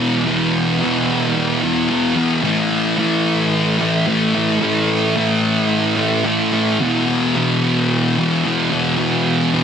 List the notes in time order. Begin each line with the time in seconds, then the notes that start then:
Already playing: E2
0.00 B2 E3
0.25 E2 B2 E3
0.81 E2 B2 E3
1.62 B2 E3
1.89 E2 B2 E3
2.15 B2 E3
2.42 A2 E3 A3
2.98 A2 E3 A3
3.79 E3 A3
4.06 A2 E3 A3
4.34 E3 A3
4.60 A2 E3 A3
5.16 A2 E3 A3
5.96 E3 A3
6.24 A2 E3 A3
6.52 E3 A3
6.80 E2 B2 E3
7.34 E2 B2 E3
8.18 B2 E3
8.44 E2 B2 E3
8.70 B2 E3
8.98 E2 B2 E3
9.52 E2 B2 E3